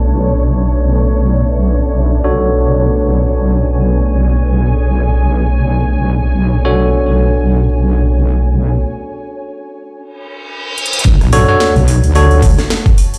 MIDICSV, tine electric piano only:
0, 0, Header, 1, 2, 480
1, 0, Start_track
1, 0, Tempo, 500000
1, 12657, End_track
2, 0, Start_track
2, 0, Title_t, "Tine electric piano"
2, 0, Program_c, 0, 4
2, 0, Note_on_c, 0, 62, 68
2, 0, Note_on_c, 0, 66, 64
2, 0, Note_on_c, 0, 69, 64
2, 0, Note_on_c, 0, 73, 76
2, 2124, Note_off_c, 0, 69, 0
2, 2125, Note_off_c, 0, 62, 0
2, 2125, Note_off_c, 0, 66, 0
2, 2125, Note_off_c, 0, 73, 0
2, 2153, Note_on_c, 0, 66, 61
2, 2153, Note_on_c, 0, 69, 63
2, 2154, Note_on_c, 0, 62, 68
2, 2155, Note_on_c, 0, 73, 76
2, 6354, Note_off_c, 0, 62, 0
2, 6354, Note_off_c, 0, 66, 0
2, 6354, Note_off_c, 0, 69, 0
2, 6355, Note_off_c, 0, 73, 0
2, 6384, Note_on_c, 0, 62, 72
2, 6384, Note_on_c, 0, 66, 65
2, 6384, Note_on_c, 0, 69, 65
2, 6384, Note_on_c, 0, 73, 77
2, 10583, Note_off_c, 0, 62, 0
2, 10583, Note_off_c, 0, 66, 0
2, 10583, Note_off_c, 0, 69, 0
2, 10583, Note_off_c, 0, 73, 0
2, 10874, Note_on_c, 0, 66, 76
2, 10875, Note_on_c, 0, 62, 86
2, 10875, Note_on_c, 0, 69, 82
2, 10875, Note_on_c, 0, 73, 95
2, 11003, Note_off_c, 0, 66, 0
2, 11003, Note_off_c, 0, 69, 0
2, 11004, Note_off_c, 0, 62, 0
2, 11004, Note_off_c, 0, 73, 0
2, 11026, Note_on_c, 0, 62, 77
2, 11026, Note_on_c, 0, 66, 72
2, 11026, Note_on_c, 0, 73, 83
2, 11027, Note_on_c, 0, 69, 72
2, 11268, Note_off_c, 0, 62, 0
2, 11268, Note_off_c, 0, 66, 0
2, 11268, Note_off_c, 0, 73, 0
2, 11269, Note_off_c, 0, 69, 0
2, 11669, Note_on_c, 0, 66, 73
2, 11669, Note_on_c, 0, 73, 90
2, 11670, Note_on_c, 0, 62, 80
2, 11670, Note_on_c, 0, 69, 73
2, 11916, Note_off_c, 0, 62, 0
2, 11916, Note_off_c, 0, 66, 0
2, 11916, Note_off_c, 0, 69, 0
2, 11916, Note_off_c, 0, 73, 0
2, 12657, End_track
0, 0, End_of_file